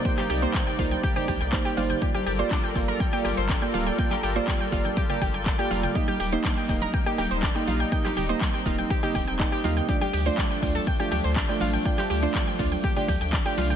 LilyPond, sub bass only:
\new Staff \with { instrumentName = "Sub bass" } { \clef bass \time 4/4 \key g \minor \tempo 4 = 122 r8 c,16 r8. c,16 r8. c,16 c,16 r8 g,,16 r16 | r8 g,,16 r8. g,,16 r8. g,,16 g,,16 r8 d,,16 r16 | r8 g,,16 r8. g,,16 r8. g,,16 g,,16 r8 f,,16 r16 | r8 ees,,16 r8. ees,,16 r8. ees,,16 ees,,16 r8 bes,,16 r16 |
r8 ees,,16 r8. ees,,16 r8. ees,,16 ees,,16 r8 ees,16 r16 | r8 d,16 r8. d,16 r8. d,16 d,16 r8 a,,16 r16 | r8 d,16 r8. d,16 r8. d,16 d,16 r8 c,16 r16 | }